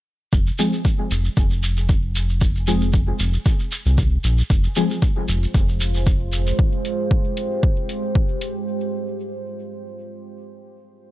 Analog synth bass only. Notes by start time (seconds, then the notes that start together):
0.33 F1
1.11 F1
1.37 F1
3.20 F1
3.86 C2
4.24 A#1
4.50 F1
5.28 F1
5.54 F1